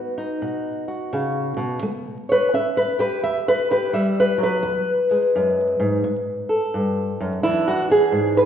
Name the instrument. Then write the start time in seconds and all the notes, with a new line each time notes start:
steel-string acoustic guitar
Already playing: B3 D#4 F#4 B4
0.18 D#4
0.42 B2 F#4
0.88 F#4
1.13 C#3
1.57 B2
1.83 A3
2.29 B4 C#5
2.54 C#4 E5
2.77 B4
2.99 G4 B4
3.23 E2 E5
3.48 B4
3.71 G4 B4
3.93 G3 E5
4.20 B4
4.38 F#3
4.43 B4
4.63 E2
5.11 G#3
5.35 F#2
5.80 G#2
6.04 A2
6.49 A4
6.74 G2
7.21 F#2
7.43 E2 E3 D4 E4
7.68 F#4
7.90 D4 G#4
8.12 G#2
8.37 B4